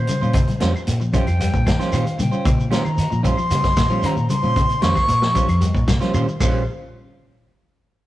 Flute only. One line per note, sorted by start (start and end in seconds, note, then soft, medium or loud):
0.00 0.62 C5 medium
1.16 1.97 G5 loud
1.95 2.20 F5 medium
2.21 2.69 G5 medium
2.73 3.25 A#5 medium
3.25 4.07 C6 loud
4.06 4.29 A#5 medium
4.30 4.84 C6 loud
4.82 5.61 C#6 loud